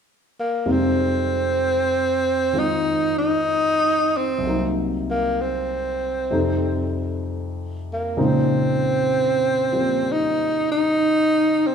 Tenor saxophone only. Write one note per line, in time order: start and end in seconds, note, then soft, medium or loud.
0.40 0.73 A#3 medium
0.72 2.61 C4 medium
2.59 3.18 D#4 medium
3.18 4.19 D#4 medium
4.17 4.71 C4 medium
5.11 5.43 A#3 medium
5.41 7.26 C4 medium
7.93 8.26 A#3 medium
8.25 10.14 C4 medium
10.13 10.71 D#4 medium
10.72 11.69 D#4 medium
11.67 11.75 C4 medium